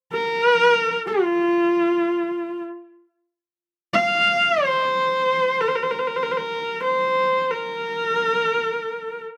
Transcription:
0.13 1.03 A#4 medium
1.07 2.61 F4 medium
3.94 4.65 F5 medium
4.64 5.62 C5 medium
5.60 5.69 A#4 medium
5.68 5.77 C5 medium
5.75 5.84 A#4 medium
5.83 5.92 C5 medium
5.91 6.00 A#4 medium
5.99 6.08 C5 medium
6.07 6.18 A#4 medium
6.16 6.24 C5 medium
6.23 6.33 A#4 medium
6.31 6.38 C5 medium
6.37 6.82 A#4 medium
6.83 7.52 C5 medium
7.51 9.23 A#4 medium

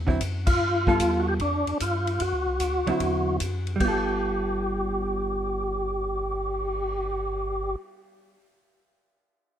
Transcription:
0.00 0.19 E2 medium
0.07 0.19 D3 medium
0.07 0.20 F#3 medium
0.07 0.20 C4 medium
0.07 0.20 E4 medium
0.07 kick medium
0.21 0.60 F#2 medium
0.21 kick soft
0.21 hi-hat pedal medium
0.21 ride medium
0.47 1.22 F4 loud
0.47 kick medium
0.47 crash medium
0.60 0.99 G2 medium
0.87 1.38 G3 medium
0.87 1.38 B3 medium
0.87 1.38 F4 medium
0.87 1.38 A4 medium
0.87 kick medium
0.99 1.39 E2 medium
0.99 kick soft
0.99 hi-hat pedal medium
0.99 ride medium
1.20 1.27 F#4 medium
1.28 1.34 G4 loud
1.39 1.65 F2 medium
1.39 1.78 D4 loud
1.39 kick soft
1.39 ride medium
1.66 1.73 F2 soft
1.66 ride medium
1.80 2.19 G2 medium
1.80 2.22 F4 medium
1.80 kick soft
1.80 hi-hat pedal medium
1.80 ride medium
2.07 ride soft
2.20 2.33 F#2 medium
2.20 3.37 F#4 loud
2.20 kick soft
2.20 ride medium
2.32 2.46 D2 medium
2.46 2.59 C2 medium
2.60 2.84 D2 medium
2.60 kick soft
2.60 hi-hat pedal medium
2.60 ride medium
2.85 2.92 D2 soft
2.85 3.38 D3 medium
2.85 3.37 F#3 medium
2.85 3.38 C4 medium
2.85 3.38 E4 medium
2.85 ride soft
3.00 3.39 E2 medium
3.00 kick soft
3.00 ride medium
3.40 3.79 F#2 medium
3.40 kick soft
3.40 hi-hat pedal medium
3.40 ride medium
3.67 ride soft
3.76 8.35 G3 medium
3.80 7.75 G1 medium
3.80 8.40 B3 medium
3.80 7.75 G4 medium
3.80 kick medium
3.80 crash medium
3.85 8.44 F4 medium
3.85 8.47 A4 medium
4.07 cymbal swell soft

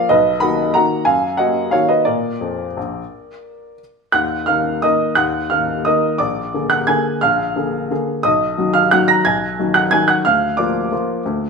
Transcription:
0.09 0.41 B1 medium
0.09 0.40 B4 medium
0.09 0.42 D#5 medium
0.40 0.72 D#3 soft
0.40 0.72 A#3 soft
0.40 0.72 F#4 soft
0.40 0.72 F#5 medium
0.40 0.74 B5 medium
0.74 1.04 D#3 soft
0.74 1.04 A#3 soft
0.74 1.04 F#4 soft
0.74 1.04 F#5 medium
0.74 1.06 A#5 medium
1.05 1.38 F#2 medium
1.05 1.36 F5 medium
1.05 1.38 G#5 medium
1.37 1.69 A#3 soft
1.37 1.70 F#4 soft
1.37 1.70 D#5 medium
1.37 1.72 F#5 medium
1.71 2.03 D#3 soft
1.71 2.04 A#3 soft
1.71 2.04 F#4 soft
1.71 1.89 C#5 medium
1.71 1.89 F5 medium
1.89 2.05 B4 medium
1.89 2.06 D#5 medium
2.05 2.31 A#2 soft
2.05 2.34 A#3 soft
2.05 3.75 A#4 soft
2.05 3.78 D5 medium
2.41 2.66 F2 soft
2.77 3.01 A#1 soft
4.12 4.47 D#2 medium
4.12 4.45 F#5 medium
4.12 4.47 F#6 medium
4.46 4.79 D#3 soft
4.46 4.80 A#3 soft
4.46 4.80 A#4 soft
4.46 4.81 F5 medium
4.46 4.82 F6 medium
4.82 5.14 D#3 soft
4.82 5.14 A#3 soft
4.82 5.14 A#4 soft
4.82 5.15 D#5 medium
4.82 5.17 D#6 medium
5.15 5.50 D#2 medium
5.15 5.48 F#5 medium
5.15 5.50 F#6 medium
5.50 5.83 D#3 soft
5.50 5.83 A#3 soft
5.50 5.83 A#4 soft
5.50 5.83 F5 medium
5.50 5.85 F6 medium
5.85 6.17 D#3 soft
5.85 6.17 A#3 soft
5.85 6.17 A#4 medium
5.85 6.18 D#5 medium
5.85 6.20 D#6 medium
6.18 6.53 A#1 medium
6.18 6.67 D5 medium
6.18 6.70 D6 medium
6.54 6.85 D3 soft
6.54 6.85 A#3 soft
6.54 6.86 G#4 soft
6.70 6.87 F#5 medium
6.70 6.88 F#6 medium
6.87 7.19 D3 soft
6.87 7.19 A#3 soft
6.87 7.20 G#4 soft
6.87 7.20 G#5 medium
6.87 7.22 G#6 medium
7.21 7.55 A#1 medium
7.21 8.20 F5 medium
7.21 8.24 F6 medium
7.56 7.87 D3 soft
7.56 7.87 A#3 soft
7.56 7.87 G#4 soft
7.91 8.21 D3 soft
7.91 8.21 A#3 soft
7.91 8.21 G#4 soft
8.23 8.56 B1 medium
8.23 8.71 D#5 medium
8.23 8.74 D#6 medium
8.58 8.89 D#3 soft
8.58 8.89 F#3 soft
8.58 8.89 F#4 soft
8.74 8.91 F5 medium
8.74 8.91 F6 medium
8.91 9.23 D#3 soft
8.91 9.23 F#3 soft
8.91 9.23 F#4 soft
8.91 9.08 F#5 medium
8.91 9.09 F#6 medium
9.08 9.25 A#5 medium
9.08 9.25 A#6 medium
9.25 9.58 B1 medium
9.25 9.72 G#5 medium
9.25 9.75 G#6 medium
9.59 9.89 D#3 soft
9.59 9.90 F#3 soft
9.59 9.90 F#4 soft
9.74 9.91 F#5 medium
9.74 9.92 F#6 medium
9.91 10.23 D#3 soft
9.91 10.23 F#3 soft
9.91 10.23 F#4 soft
9.91 10.08 G#5 medium
9.91 10.09 G#6 loud
10.08 10.24 F#5 medium
10.08 10.25 F#6 medium
10.25 10.58 D2 medium
10.25 10.57 F5 medium
10.25 10.58 F6 medium
10.57 10.89 F3 soft
10.57 10.89 A#3 soft
10.57 10.89 F4 soft
10.57 11.50 D5 medium
10.57 11.50 D6 medium
10.92 11.22 F3 soft
10.92 11.22 A#3 soft
10.92 11.23 F4 medium
11.26 11.50 D2 medium

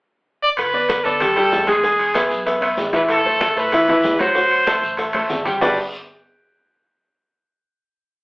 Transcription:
0.42 0.49 D5 loud
0.57 1.01 G1 medium
0.57 1.06 B4 loud
0.57 high bongo medium
0.57 high conga soft
0.57 high timbale medium
0.57 long guiro medium
0.57 maracas medium
0.73 0.99 B3 medium
0.73 0.99 B4 medium
0.73 1.00 D5 medium
0.73 high conga soft
0.73 maracas soft
0.89 high bongo medium
0.89 high conga loud
0.89 high timbale medium
0.89 low timbale medium
0.89 short guiro medium
0.89 maracas medium
1.04 1.49 D2 medium
1.04 1.18 B3 medium
1.04 1.70 A4 medium
1.04 1.18 B4 medium
1.04 1.18 D5 medium
1.04 high bongo soft
1.04 short guiro medium
1.20 1.34 G3 medium
1.20 1.34 G4 medium
1.20 1.34 G5 medium
1.20 high bongo medium
1.20 high conga soft
1.20 low conga medium
1.20 high timbale medium
1.20 long guiro medium
1.20 maracas medium
1.36 1.62 G3 medium
1.36 1.62 G4 medium
1.36 1.62 G5 medium
1.36 high bongo soft
1.36 high conga soft
1.36 high timbale medium
1.36 maracas soft
1.52 2.25 E2 medium
1.52 high bongo soft
1.52 low bongo medium
1.52 high conga medium
1.52 low timbale medium
1.52 short guiro medium
1.52 maracas medium
1.67 1.80 G#3 medium
1.67 1.81 G#4 medium
1.67 2.63 G#4 medium
1.67 1.81 G#5 medium
1.67 high conga medium
1.67 high timbale medium
1.67 short guiro medium
1.67 maracas soft
1.83 2.09 G#3 medium
1.83 2.09 G#4 medium
1.83 2.10 G#5 medium
1.83 high bongo medium
1.83 high conga soft
1.83 long guiro medium
1.83 maracas medium
1.99 high conga soft
1.99 high timbale medium
1.99 maracas soft
2.14 2.41 B3 medium
2.14 2.41 B4 medium
2.14 2.41 E5 medium
2.14 high bongo medium
2.14 high conga loud
2.14 high timbale medium
2.14 low timbale medium
2.14 short guiro medium
2.14 maracas medium
2.30 2.75 B1 medium
2.30 high bongo soft
2.30 high conga soft
2.30 short guiro medium
2.30 maracas soft
2.46 2.59 B3 medium
2.46 2.59 B4 medium
2.46 2.59 E5 medium
2.46 high bongo medium
2.46 high conga soft
2.46 high timbale medium
2.46 long guiro medium
2.46 maracas medium
2.61 2.87 B3 medium
2.61 2.88 B4 medium
2.61 2.88 E5 medium
2.61 high bongo soft
2.61 high conga soft
2.61 high timbale medium
2.61 maracas soft
2.77 3.51 A1 medium
2.77 high bongo soft
2.77 low bongo medium
2.77 high conga medium
2.77 low timbale medium
2.77 short guiro medium
2.77 maracas medium
2.93 3.19 E3 medium
2.93 3.19 E4 medium
2.93 3.01 B4 medium
2.93 3.19 E5 medium
2.93 high conga medium
2.93 high timbale medium
2.93 short guiro medium
2.93 maracas soft
3.08 3.54 A4 loud
3.08 high bongo medium
3.08 high conga soft
3.08 high timbale medium
3.08 long guiro medium
3.08 maracas medium
3.25 3.51 A3 medium
3.25 3.51 A4 medium
3.25 3.51 C5 medium
3.25 high conga soft
3.25 maracas soft
3.41 high bongo medium
3.41 high conga loud
3.41 high timbale medium
3.41 low timbale medium
3.41 short guiro medium
3.41 maracas medium
3.56 4.01 A2 medium
3.56 3.69 A3 medium
3.56 3.69 A4 medium
3.56 4.17 B4 loud
3.56 3.70 C5 medium
3.56 high bongo soft
3.56 short guiro medium
3.56 maracas soft
3.72 3.86 E3 medium
3.72 3.86 E4 medium
3.72 3.86 E5 medium
3.72 high bongo medium
3.72 high conga soft
3.72 low conga medium
3.72 high timbale medium
3.72 long guiro medium
3.72 maracas medium
3.88 4.15 E3 medium
3.88 4.14 E4 medium
3.88 4.15 E5 medium
3.88 high bongo soft
3.88 high conga soft
3.88 low conga medium
3.88 high timbale medium
3.88 maracas soft
4.03 4.77 D2 medium
4.03 high bongo soft
4.03 low bongo medium
4.03 high conga medium
4.03 low timbale medium
4.03 short guiro medium
4.03 maracas medium
4.19 4.33 F#3 medium
4.19 4.33 F#4 medium
4.19 5.11 C5 loud
4.19 4.33 F#5 medium
4.19 high conga medium
4.19 high timbale medium
4.19 short guiro medium
4.35 4.61 F#3 medium
4.35 4.61 F#4 medium
4.35 4.61 F#5 medium
4.35 high bongo medium
4.35 high conga soft
4.35 long guiro medium
4.35 maracas medium
4.51 high conga soft
4.51 high timbale medium
4.51 maracas soft
4.66 4.92 A3 medium
4.66 4.93 A4 medium
4.66 4.93 C5 medium
4.66 high bongo medium
4.66 high conga loud
4.66 high timbale medium
4.66 low timbale medium
4.66 short guiro medium
4.66 maracas medium
4.82 5.26 A1 medium
4.82 high bongo soft
4.82 high conga soft
4.82 short guiro medium
4.82 maracas soft
4.97 5.11 A3 medium
4.97 5.11 A4 medium
4.97 5.11 C5 medium
4.97 high bongo medium
4.97 high conga soft
4.97 high timbale medium
4.97 long guiro medium
4.97 maracas medium
5.13 5.40 A3 medium
5.13 5.40 A4 medium
5.13 5.40 C5 medium
5.13 high bongo soft
5.13 high conga medium
5.13 high timbale medium
5.13 maracas soft
5.29 5.58 G1 medium
5.29 high bongo soft
5.29 low bongo medium
5.29 low conga medium
5.29 low timbale medium
5.29 short guiro medium
5.29 maracas medium
5.45 5.58 G3 medium
5.45 5.58 G4 medium
5.45 5.59 G5 medium
5.45 low conga medium
5.45 high timbale medium
5.45 short guiro medium
5.45 maracas soft
5.61 5.76 G1 medium
5.61 5.76 G3 medium
5.61 5.76 D4 medium
5.61 5.76 F#4 medium
5.61 5.77 G4 medium
5.61 5.77 B4 medium
5.61 5.76 D5 loud
5.61 low bongo loud
5.61 low conga medium
5.61 low timbale loud
5.61 long guiro loud
5.61 maracas loud

